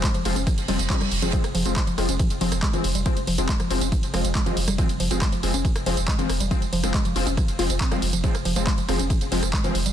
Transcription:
0.04 G#3, kick, clap, closed hi-hat, ride, tambourine
0.14 F1 F3, closed hi-hat, ride, tambourine
0.25 F1 F3 G#3 C4, open hi-hat, ride
0.36 F1 C#4, closed hi-hat, ride, tambourine
0.47 F3, kick, cross-stick, closed hi-hat, ride, tambourine, reverse cymbal
0.58 F1, closed hi-hat, ride, tambourine
0.68 F1 F3 G3 G#3 C4, open hi-hat, ride
0.79 F1, closed hi-hat, ride, tambourine
0.90 F3 G3 G#3 C4, kick, clap, closed hi-hat, ride, tambourine
1.01 F1 G3, cross-stick, closed hi-hat, ride, tambourine
1.12 F1, open hi-hat, ride
1.22 F1 F3 G#3 C4, closed hi-hat, ride, tambourine
1.33 F3 G#3 C4, kick, closed hi-hat, ride, tambourine
1.44 F1, cross-stick, closed hi-hat, ride, tambourine
1.55 F1 F3, open hi-hat, ride
1.66 F1 F3 G#3 C4, closed hi-hat, ride, tambourine
1.76 G#3, kick, clap, closed hi-hat, ride, tambourine
1.87 F1 F3, closed hi-hat, ride, tambourine
1.98 F1 F3 G#3 C4, cross-stick, open hi-hat, ride
2.09 F1 C#4, closed hi-hat, ride, tambourine
2.19 F3, kick, closed hi-hat, ride, tambourine
2.30 F1, closed hi-hat, ride, tambourine
2.41 F1 F3 G#3 C4, open hi-hat, ride
2.52 F1, cross-stick, closed hi-hat, ride, tambourine
2.63 G#3, kick, clap, closed hi-hat, ride, tambourine
2.73 F1 E3 F3 G#3 C4, closed hi-hat, ride, tambourine
2.84 F1, open hi-hat, ride
2.95 F1 G3, closed hi-hat, ride, tambourine
3.06 F3 G#3 C4, kick, cross-stick, closed hi-hat, ride, tambourine
3.17 F1, closed hi-hat, ride, tambourine
3.27 F1 F3, open hi-hat, ride
3.38 F1 F3 G#3 C4, closed hi-hat, ride, tambourine
3.49 G#3, kick, clap, closed hi-hat, ride, tambourine
3.60 F1 F3, cross-stick, closed hi-hat, ride, tambourine
3.70 F1 F3 G#3 C4, open hi-hat, ride
3.81 F1 C#4, closed hi-hat, ride, tambourine
3.92 F3, kick, closed hi-hat, ride, tambourine
4.03 F1, closed hi-hat, ride, tambourine
4.14 F1 F3 G#3 C4, cross-stick, open hi-hat, ride
4.24 F1, closed hi-hat, ride, tambourine
4.35 G#3, kick, clap, closed hi-hat, ride, tambourine
4.46 F1 E3 F3 G#3 C4, closed hi-hat, ride, tambourine
4.57 F1, open hi-hat, ride
4.68 F1 G3, cross-stick, closed hi-hat, ride, tambourine
4.78 F3 G#3 C4, kick, closed hi-hat, ride, tambourine
4.89 F1, closed hi-hat, ride, tambourine
5.00 F1 F3, open hi-hat, ride
5.11 F1 F3 G#3 C4, closed hi-hat, ride, tambourine
5.22 G#3, kick, cross-stick, clap, closed hi-hat, ride, tambourine
5.32 F1 F3, closed hi-hat, ride, tambourine
5.43 F1 F3 G#3 C4, open hi-hat, ride
5.54 F1 C#4, closed hi-hat, ride, tambourine
5.65 F3, kick, closed hi-hat, ride, tambourine
5.76 F1, cross-stick, closed hi-hat, ride, tambourine
5.86 F1 F3 G#3 C4, open hi-hat, ride
5.97 F1, closed hi-hat, ride, tambourine
6.08 G#3, kick, clap, closed hi-hat, ride, tambourine
6.19 F1 E3 F3 G#3 C4, closed hi-hat, ride, tambourine
6.29 F1, cross-stick, open hi-hat, ride
6.40 F1 G3, closed hi-hat, ride, tambourine
6.51 F3 G#3 C4, kick, closed hi-hat, ride, tambourine
6.62 F1, closed hi-hat, ride, tambourine
6.73 F1 F3, open hi-hat, ride
6.83 F1 F3 G#3 C4, cross-stick, closed hi-hat, ride, tambourine
6.94 G#3, kick, clap, closed hi-hat, ride, tambourine
7.05 F1 F3, closed hi-hat, ride, tambourine
7.16 F1 F3 G#3 C4, open hi-hat, ride
7.27 F1 C#4, closed hi-hat, ride, tambourine
7.37 F3, kick, cross-stick, closed hi-hat, ride, tambourine
7.48 F1, closed hi-hat, ride, tambourine
7.59 F1 F3 G#3 C4 F4, open hi-hat, ride
7.70 F1, closed hi-hat, ride, tambourine
7.80 C4, kick, clap, closed hi-hat, ride, tambourine
7.91 F1 F3 G3 G#3 C4, cross-stick, closed hi-hat, ride, tambourine
8.02 F1, open hi-hat, ride
8.13 F1 F3, closed hi-hat, ride, tambourine
8.24 F3 G#3 C4, kick, closed hi-hat, ride, tambourine
8.35 F1, cross-stick, closed hi-hat, ride, tambourine
8.45 F1 F3, open hi-hat, ride
8.56 F1 F3 G#3 C4, closed hi-hat, ride, tambourine
8.67 G#3, kick, clap, closed hi-hat, ride, tambourine
8.78 F1 F3, closed hi-hat, ride, tambourine
8.88 F1 F3 G#3 C4, cross-stick, open hi-hat, ride
8.99 F1 C#4, closed hi-hat, ride, tambourine
9.10 F3, kick, closed hi-hat, ride, tambourine
9.21 F1, closed hi-hat, ride, tambourine
9.32 F1 F3 G#3 C4, open hi-hat, ride
9.42 F1, cross-stick, closed hi-hat, ride, tambourine
9.53 G#3, kick, clap, closed hi-hat, ride, tambourine
9.64 F1 E3 F3 G#3 C4, closed hi-hat, ride, tambourine
9.75 F1, open hi-hat, ride
9.86 F1 G3, closed hi-hat, ride, tambourine

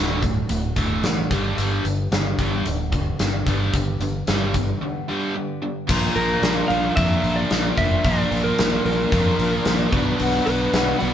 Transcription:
Already playing: D1 D2 A2 D3 A3 D4 F#4 A4
0.21 D2 A2 D4 F#4 A4, kick, closed hi-hat
0.49 D1 D2 A2 A3 D4 F#4 A4, closed hi-hat
0.75 D1 D2 A2 D3 D4 F#4 A4, kick, closed hi-hat
1.02 A1 D2 A2 D3 A3 D4 F#4 A4, snare, closed hi-hat
1.28 G1 G2 D3 G3 B3 D4 G4, kick, closed hi-hat
1.55 G1 G2 D3 G3 B3 D4 G4, closed hi-hat
1.83 G1 G2 D3 G3 B3 D4 G4, closed hi-hat
2.10 G1 G2 D3 G3 B3 D4 G4, snare, closed hi-hat
2.37 G1 G2 D3 G3 B3 D4 G4, kick, closed hi-hat
2.64 D1 G2 D3 G3 B3 D4 G4, closed hi-hat
2.90 G2 D3 G3 B3 D4 G4, kick, closed hi-hat
3.18 G1 G2 D3 G3 B3 D4 G4, snare, closed hi-hat
3.45 G1 G2 D3 G3 B3 D4 G4, kick, closed hi-hat
3.73 G1 G2 D3 G3 B3 D4 G4, kick, closed hi-hat
3.99 G1 G2 D3 G3 B3 D4 G4, closed hi-hat
4.26 G1 G2 D3 G3 B3 D4 G4, snare, closed hi-hat
4.54 G2 D3 G3 B3 D4 G4, kick, closed hi-hat
4.81 G2 D3 G3 B3 D4 G4
5.08 G2 D3 G3 B3 D4 G4
5.35 G2 D3 G3 B3 D4 G4
5.62 G2 D3 G3 B3 D4 G4
5.87 A#1 A#2 D3 F3 A#3 D4 F4 A#4, kick, crash
5.91 A#4
6.16 A#1 F3 A#3 D4 A#4, open hi-hat
6.42 A#1 A#2 D3 F3 A#3 D4 A#4, snare, open hi-hat
6.68 A#1 A#3 D4 A#4 F5, open hi-hat
6.72 F3
6.96 F2 A#2 F3 A#3 D4 F4 A#4 E5, kick, open hi-hat
7.22 A#1 F3 A#3 D4 A#4, open hi-hat
7.36 D5
7.50 A#1 A#2 D3 F3 A#3 D4 A#4, snare, open hi-hat
7.77 F1 F3 A#3 D4 A#4 E5, kick, open hi-hat
8.03 A#1 A#2 D3 F3 A#3 D4 F4 A#4 D5, kick, open hi-hat
8.07 A#4
8.31 A#1 F3 A#3 D4 A#4, open hi-hat
8.44 A#4
8.58 A#1 A#2 D3 F3 A#3 D4 A#4, snare, open hi-hat
8.84 A#1 F3 A#3 D4 A#4, open hi-hat
9.11 F2 A#2 F3 A#3 D4 F4 A#4, kick, open hi-hat
9.38 A#1 F3 A#3 D4 A#4, open hi-hat
9.64 A#1 A#2 D3 F3 A#3 D4 A#4, snare, open hi-hat
9.91 B1 B2 F#3 B3 D4 F#4 B4, kick, open hi-hat
9.95 F#4 B4
10.18 B1 B2 F#3 B3 D4 F#4 B4, open hi-hat
10.45 B1 D4 B4, open hi-hat
10.73 B1 B2 F#3 B3 D4 F#4 B4, snare, open hi-hat
10.99 B1 B2 F#3 B3 D4 F#4 B4 F#5, open hi-hat

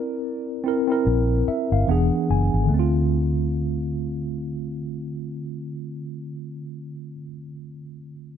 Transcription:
Already playing: C4 E4 A#4 D5
0.64 C4 E4
0.68 A#4
0.88 C4 E4
0.92 A#4
1.07 A#1
1.48 E5
1.72 G1 F5
1.87 E1 E3 B3 D4 G#4 F#5
2.30 F#1 G#5
2.54 G#1
2.63 D3
2.69 D2 A3
2.74 C4
2.79 F4

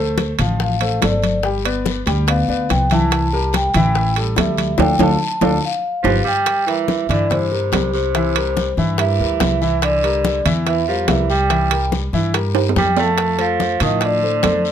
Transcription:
Already playing: D2 A3 A4 C5
0.18 high bongo, high conga, high timbale, short guiro
0.39 A1 F3 F4 F5, high bongo, high conga, low conga, high timbale, short guiro
0.60 F5, high bongo, high conga, long guiro
0.81 A3 A4 C5, high bongo, high conga, high timbale
1.01 G1 A3 A4 C5 D5, high bongo, low bongo, high conga, high timbale, low timbale, short guiro
1.22 high conga, high timbale, short guiro
1.43 G3 G4 G5, high bongo, high conga, long guiro
1.65 B3 B4 D5, high bongo, high conga, high timbale
1.85 high bongo, high conga, short guiro
2.06 D2 G3 G4 G5, high bongo, high conga, high timbale, short guiro
2.27 B3 B4 D5 F5, high bongo, high conga, high timbale, long guiro
2.48 D2 B3 B4 D5, high bongo, high conga
2.69 C2 G5, high bongo, low bongo, high conga, high timbale, short guiro
2.90 E3 E4 E5 A5, high conga, high timbale, short guiro
3.11 high bongo, high conga, high timbale, long guiro
3.33 G3 G4 A#4, high bongo, high conga
3.53 G5, high bongo, high conga, high timbale, short guiro
3.74 A1 E3 E4 E5, high bongo, high conga, low conga, high timbale, short guiro
3.95 high bongo, high conga, long guiro
4.16 G3 G4 A4, high bongo, high conga, high timbale
4.36 D2 G3 G4 A4 E5, high bongo, low bongo, high conga, high timbale, low timbale, short guiro
4.58 high conga, high timbale, short guiro
4.78 D2 D4 F4 A4 G5, low bongo, high conga, high timbale, long guiro
4.99 D2 D4 F4 A4 A5, low bongo, high conga, high timbale, long guiro
5.41 D2 D4 F4 A4, low bongo, high conga, high timbale, long guiro
5.65 F5
6.03 G1 F3 F4 G4 B4 F5, low bongo, high conga, high timbale, long guiro
6.24 G3 G5
6.46 high bongo, high conga, high timbale, long guiro
6.67 E3 G3 G4 A#4 E5, high conga, high timbale
6.88 high bongo, high conga, low timbale, short guiro
7.09 G2 D3 E3 E4 D5 E5, low conga, high timbale, short guiro
7.30 C3 C5, high bongo, high conga, low conga, high timbale, long guiro
7.52 G3 G4 A#4, high conga
7.72 C2 G3 G4 A#4, high bongo, low bongo, high conga, high timbale, low timbale, short guiro
7.93 C3 C5, high conga, short guiro
8.15 E3 E4 E5, high bongo, high conga, high timbale, long guiro
8.36 G3 G4 A#4, high bongo, high conga, high timbale
8.57 high bongo, high conga, low timbale, short guiro
8.77 G2 E3 E4 E5, high bongo, high conga, short guiro
8.98 E3 G3 G4 A#4 E5, high bongo, high conga, high timbale, long guiro
9.20 D2 G3 G4 A#4, high conga
9.40 C2, high bongo, low bongo, high conga, high timbale, low timbale, short guiro
9.61 E3 E4 E5, high bongo, high conga, short guiro
9.82 D3 D5, high bongo, high conga, high timbale, long guiro
10.03 G3 G4 A#4, high conga, high timbale
10.24 high bongo, high conga, low timbale, short guiro
10.45 E2 E3 E4 E5, low conga, high timbale, short guiro
10.67 E3 E5, high bongo, high conga, high timbale, long guiro
10.88 F3 G3 G4 A#4 F5, high conga
11.08 C2 E3 G3 G4 A#4 E5, high bongo, low bongo, high conga, high timbale, low timbale, short guiro
11.29 G3 G5, high conga, short guiro
11.50 E3 E4 E5, high bongo, high conga, high timbale, long guiro
11.71 G3 G4 A#4, high bongo, high conga, high timbale
11.92 high bongo, high conga, low timbale, short guiro
12.13 G2 E3 E4 E5, high bongo, high conga, short guiro
12.34 G3 G4 A#4, high bongo, high conga, high timbale, long guiro
12.54 G3 G4 A#4, high conga, high timbale
12.69 low timbale
12.76 F2 G3 G5, high bongo, low bongo, high conga, short guiro
12.97 F3 A3 F4 F5 A5, high bongo, high conga, low timbale, short guiro
13.18 high bongo, high conga, high timbale, long guiro
13.38 F3 A3 A4 C5 F5, high conga, high timbale
13.60 high bongo, high conga, low timbale, short guiro
13.80 A2 D#3 F3 F4 F5, low conga, high timbale, short guiro
13.85 D#5
14.01 D3, high bongo, high conga, high timbale, long guiro
14.05 D5
14.23 A3 A4 C5, high conga
14.43 F2 A3 A4 C5, high bongo, low bongo, high conga, high timbale, low timbale, short guiro
14.64 high conga, short guiro

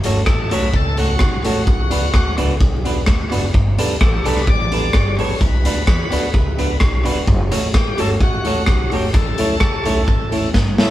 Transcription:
0.04 G1 A3 C#4 F#4 A4 C#5, closed hi-hat
0.26 A1 A4, kick, cross-stick
0.51 B1 A3 C#4 F#4 A4 B4 C#5, closed hi-hat
0.73 C#2 A4, kick
0.97 A3 C#4 F#4 A4 C#5, closed hi-hat
1.19 B1, kick, cross-stick
1.44 A1 A3 C#4 F#4 A4 C#5, closed hi-hat
1.67 B1, kick
1.90 C#2 B3 D4 F#4 B4, closed hi-hat
2.14 D2, kick, cross-stick
2.38 C#2 B3 D4 F#4 B4, closed hi-hat
2.60 B1, kick
2.85 B3 D4 F#4 B4, closed hi-hat
3.06 D2, kick, cross-stick
3.31 F#1 B3 D4 F#4 B4, closed hi-hat
3.54 G1, kick
3.78 B1 B3 D4 G4 A4 B4, closed hi-hat
4.01 A1 A4, kick, cross-stick
4.25 B1 B3 D4 G4 A4 B4, closed hi-hat
4.37 cross-stick
4.47 A1 D5, kick
4.71 B3 D4 G4 A4 B4, closed hi-hat
4.93 G1, kick, cross-stick
5.17 A1 B3 D4 G4 A4 B4 C#5, open hi-hat
5.41 B1 B4, kick, hi-hat pedal
5.64 D2 B3 D4 F#4 B4, closed hi-hat
5.87 E2, kick, cross-stick
6.10 D2 B3 D4 F#4 B4, closed hi-hat
6.34 C#2, kick
6.57 B3 D4 F#4 B4, closed hi-hat
6.80 B1, kick, cross-stick
7.04 E1 B3 D4 F#4 B4, closed hi-hat
7.27 F#1, kick
7.51 A1 A3 C#4 F#4 A4 C#5, closed hi-hat
7.74 A1 G4, kick, cross-stick
7.97 G1 A3 C#4 F#4 A4 C#5, closed hi-hat
8.20 A1 F#4, kick
8.44 A3 C#4 F#4 A4 C#5, closed hi-hat
8.66 B1, kick, cross-stick
8.91 G1 A3 C#4 F#4 G4 A4 C#5, open hi-hat
9.13 A1 A4, kick, hi-hat pedal
9.38 B1 A3 C#4 E4 A4 C#5, closed hi-hat
9.60 C#2, kick, cross-stick
9.85 B1 A3 C#4 E4 A4 C#5, closed hi-hat
10.08 A1, kick
10.31 A3 C#4 E4 A4 C#5, closed hi-hat
10.54 G1, kick, snare
10.78 A1 A3 C#4 E4 A4 C#5, snare

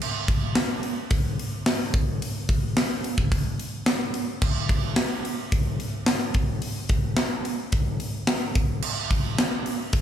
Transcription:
0.02 crash
0.28 kick, open hi-hat
0.55 snare, open hi-hat
0.83 open hi-hat
1.11 kick, open hi-hat
1.39 open hi-hat
1.66 snare, open hi-hat
1.94 kick, open hi-hat
2.22 open hi-hat
2.49 kick, open hi-hat
2.77 snare, open hi-hat
3.04 open hi-hat
3.18 kick
3.32 kick, open hi-hat
3.60 open hi-hat
3.86 snare, open hi-hat
4.14 open hi-hat
4.42 kick, crash
4.69 kick, open hi-hat
4.96 snare, open hi-hat
5.25 open hi-hat
5.52 kick, open hi-hat
5.80 open hi-hat
6.06 snare, open hi-hat
6.34 kick, open hi-hat
6.62 open hi-hat
6.89 kick, open hi-hat
7.17 snare, open hi-hat
7.45 open hi-hat
7.72 kick, open hi-hat
8.00 open hi-hat
8.27 snare, open hi-hat
8.55 kick, open hi-hat
8.82 crash
9.11 kick, open hi-hat
9.38 snare, open hi-hat
9.66 open hi-hat
9.93 kick, open hi-hat

